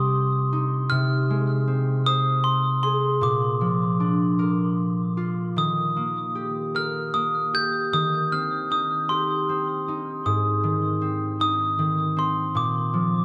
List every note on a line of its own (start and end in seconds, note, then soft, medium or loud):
0.00 0.90 C3 medium
0.00 0.96 G3 soft
0.00 1.67 C4 soft
0.00 0.71 F4 medium
0.00 1.36 G4 medium
0.00 0.48 D#6 medium
0.53 3.23 D#4 soft
0.90 3.26 C3 medium
0.90 2.09 F6 medium
1.30 3.26 G#3 medium
1.67 4.67 C4 soft
2.06 4.05 C5 medium
2.06 2.46 D#6 medium
2.44 2.82 C6 medium
2.83 5.11 G#4 soft
2.83 3.00 C6 medium
3.21 5.63 A#2 medium
3.21 5.15 D6 medium
3.61 5.63 F3 soft
4.00 5.62 D4 soft
4.39 6.51 A#4 medium
5.17 7.69 F4 medium
5.56 7.92 D#3 medium
5.56 6.79 D#6 medium
5.96 7.14 A#3 soft
6.35 7.53 G4 soft
6.75 8.87 A#4 medium
6.75 7.16 F6 medium
7.14 10.36 A#3 soft
7.14 7.55 D#6 medium
7.54 9.10 G4 soft
7.54 7.95 G6 medium
7.93 10.30 D#3 medium
7.93 8.33 D#6 medium
8.32 9.49 C4 soft
8.32 8.50 F6 medium
8.70 9.88 D#4 soft
8.70 8.89 D#6 medium
9.09 10.32 G4 soft
9.09 9.92 C6 medium
9.49 11.01 C4 soft
9.88 11.40 D#4 soft
10.26 12.60 G#2 medium
10.26 10.99 D#6 medium
10.63 11.77 D#3 soft
11.01 12.16 C4 soft
11.40 13.25 D#4 soft
11.40 12.13 D#6 medium
11.79 12.60 D#3 medium
12.17 13.25 C4 soft
12.17 12.57 C6 medium
12.55 13.25 A#2 medium
12.55 13.25 D6 medium
12.93 13.25 F3 soft